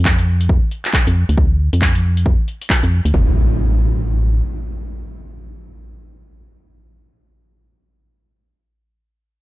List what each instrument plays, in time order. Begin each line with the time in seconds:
Already playing: fm bass F2
0.05 kick, clap
0.19 closed hi-hat
0.41 closed hi-hat
0.49 kick
0.71 closed hi-hat
0.85 clap, closed hi-hat
0.93 kick, clap
1.07 fm bass F2, closed hi-hat
1.29 fm bass D2, closed hi-hat
1.38 fm bass D2, kick
1.73 fm bass F2, closed hi-hat
1.82 kick, clap
1.95 closed hi-hat
2.17 closed hi-hat
2.26 kick
2.48 closed hi-hat
2.62 closed hi-hat
2.70 kick, clap
2.83 fm bass F2, closed hi-hat
3.05 fm bass D2, closed hi-hat
3.14 fm bass A1, kick, floor tom, impact